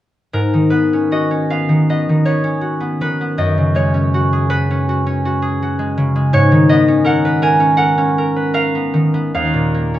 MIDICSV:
0, 0, Header, 1, 2, 480
1, 0, Start_track
1, 0, Tempo, 800000
1, 201, Time_signature, 4, 2, 24, 8
1, 678, Tempo, 761421
1, 2118, Tempo, 745342
1, 3558, Tempo, 726392
1, 4998, Tempo, 768246
1, 6348, End_track
2, 0, Start_track
2, 0, Title_t, "Harp"
2, 0, Program_c, 0, 46
2, 199, Note_on_c, 0, 44, 41
2, 201, Note_on_c, 0, 70, 49
2, 321, Note_on_c, 0, 51, 30
2, 421, Note_on_c, 0, 71, 43
2, 427, Note_on_c, 0, 59, 30
2, 559, Note_on_c, 0, 61, 27
2, 669, Note_on_c, 0, 66, 35
2, 673, Note_on_c, 0, 75, 54
2, 783, Note_off_c, 0, 61, 0
2, 790, Note_on_c, 0, 61, 30
2, 911, Note_off_c, 0, 59, 0
2, 914, Note_on_c, 0, 77, 53
2, 918, Note_on_c, 0, 59, 33
2, 1023, Note_off_c, 0, 51, 0
2, 1030, Note_on_c, 0, 51, 29
2, 1153, Note_off_c, 0, 75, 0
2, 1155, Note_off_c, 0, 59, 0
2, 1160, Note_on_c, 0, 59, 34
2, 1163, Note_on_c, 0, 75, 48
2, 1277, Note_off_c, 0, 51, 0
2, 1284, Note_on_c, 0, 51, 30
2, 1321, Note_off_c, 0, 77, 0
2, 1382, Note_off_c, 0, 59, 0
2, 1386, Note_on_c, 0, 73, 46
2, 1390, Note_on_c, 0, 59, 28
2, 1495, Note_off_c, 0, 61, 0
2, 1502, Note_on_c, 0, 61, 34
2, 1605, Note_off_c, 0, 66, 0
2, 1613, Note_on_c, 0, 66, 32
2, 1726, Note_off_c, 0, 59, 0
2, 1733, Note_on_c, 0, 59, 29
2, 1856, Note_off_c, 0, 71, 0
2, 1857, Note_off_c, 0, 51, 0
2, 1863, Note_on_c, 0, 51, 30
2, 1866, Note_on_c, 0, 71, 49
2, 1980, Note_off_c, 0, 59, 0
2, 1988, Note_on_c, 0, 59, 30
2, 2087, Note_off_c, 0, 75, 0
2, 2095, Note_on_c, 0, 42, 42
2, 2097, Note_on_c, 0, 75, 58
2, 2131, Note_off_c, 0, 51, 0
2, 2137, Note_off_c, 0, 44, 0
2, 2137, Note_off_c, 0, 70, 0
2, 2222, Note_on_c, 0, 49, 33
2, 2331, Note_off_c, 0, 73, 0
2, 2332, Note_on_c, 0, 56, 34
2, 2339, Note_on_c, 0, 73, 46
2, 2448, Note_off_c, 0, 61, 0
2, 2456, Note_on_c, 0, 61, 31
2, 2517, Note_off_c, 0, 75, 0
2, 2578, Note_off_c, 0, 66, 0
2, 2586, Note_on_c, 0, 66, 37
2, 2706, Note_on_c, 0, 68, 32
2, 2807, Note_off_c, 0, 71, 0
2, 2809, Note_off_c, 0, 66, 0
2, 2815, Note_on_c, 0, 66, 38
2, 2816, Note_on_c, 0, 71, 61
2, 2943, Note_off_c, 0, 61, 0
2, 2950, Note_on_c, 0, 61, 36
2, 3060, Note_off_c, 0, 66, 0
2, 3068, Note_on_c, 0, 66, 38
2, 3174, Note_off_c, 0, 61, 0
2, 3181, Note_on_c, 0, 61, 41
2, 3294, Note_off_c, 0, 66, 0
2, 3302, Note_on_c, 0, 66, 35
2, 3403, Note_off_c, 0, 68, 0
2, 3411, Note_on_c, 0, 68, 40
2, 3534, Note_off_c, 0, 66, 0
2, 3542, Note_on_c, 0, 66, 39
2, 3643, Note_off_c, 0, 56, 0
2, 3651, Note_on_c, 0, 56, 35
2, 3766, Note_off_c, 0, 49, 0
2, 3774, Note_on_c, 0, 49, 43
2, 3885, Note_off_c, 0, 56, 0
2, 3893, Note_on_c, 0, 56, 39
2, 4002, Note_off_c, 0, 73, 0
2, 4008, Note_on_c, 0, 44, 55
2, 4012, Note_on_c, 0, 73, 70
2, 4043, Note_off_c, 0, 49, 0
2, 4044, Note_off_c, 0, 42, 0
2, 4131, Note_on_c, 0, 51, 42
2, 4248, Note_on_c, 0, 75, 68
2, 4249, Note_off_c, 0, 59, 0
2, 4257, Note_on_c, 0, 59, 40
2, 4363, Note_off_c, 0, 61, 0
2, 4371, Note_on_c, 0, 61, 39
2, 4479, Note_on_c, 0, 70, 46
2, 4487, Note_on_c, 0, 78, 72
2, 4605, Note_off_c, 0, 71, 0
2, 4613, Note_on_c, 0, 71, 42
2, 4720, Note_off_c, 0, 70, 0
2, 4726, Note_on_c, 0, 70, 47
2, 4732, Note_on_c, 0, 80, 72
2, 4836, Note_off_c, 0, 61, 0
2, 4843, Note_on_c, 0, 61, 40
2, 4950, Note_off_c, 0, 78, 0
2, 4956, Note_off_c, 0, 70, 0
2, 4958, Note_on_c, 0, 78, 73
2, 4964, Note_on_c, 0, 70, 46
2, 5083, Note_off_c, 0, 61, 0
2, 5090, Note_on_c, 0, 61, 41
2, 5210, Note_off_c, 0, 70, 0
2, 5218, Note_on_c, 0, 70, 42
2, 5324, Note_off_c, 0, 71, 0
2, 5331, Note_on_c, 0, 71, 41
2, 5432, Note_off_c, 0, 70, 0
2, 5440, Note_on_c, 0, 70, 41
2, 5443, Note_on_c, 0, 77, 65
2, 5565, Note_off_c, 0, 59, 0
2, 5573, Note_on_c, 0, 59, 32
2, 5682, Note_off_c, 0, 51, 0
2, 5689, Note_on_c, 0, 51, 37
2, 5808, Note_off_c, 0, 59, 0
2, 5815, Note_on_c, 0, 59, 32
2, 5930, Note_off_c, 0, 68, 0
2, 5936, Note_off_c, 0, 77, 0
2, 5944, Note_on_c, 0, 77, 72
2, 5946, Note_on_c, 0, 39, 47
2, 5956, Note_off_c, 0, 78, 0
2, 5964, Note_off_c, 0, 44, 0
2, 5964, Note_off_c, 0, 51, 0
2, 5966, Note_off_c, 0, 59, 0
2, 5967, Note_off_c, 0, 66, 0
2, 5967, Note_off_c, 0, 71, 0
2, 6065, Note_on_c, 0, 46, 31
2, 6194, Note_on_c, 0, 58, 31
2, 6310, Note_off_c, 0, 61, 0
2, 6317, Note_on_c, 0, 61, 31
2, 6348, Note_off_c, 0, 39, 0
2, 6348, Note_off_c, 0, 46, 0
2, 6348, Note_off_c, 0, 56, 0
2, 6348, Note_off_c, 0, 58, 0
2, 6348, Note_off_c, 0, 61, 0
2, 6348, Note_off_c, 0, 70, 0
2, 6348, Note_off_c, 0, 73, 0
2, 6348, Note_off_c, 0, 75, 0
2, 6348, Note_off_c, 0, 77, 0
2, 6348, Note_off_c, 0, 80, 0
2, 6348, End_track
0, 0, End_of_file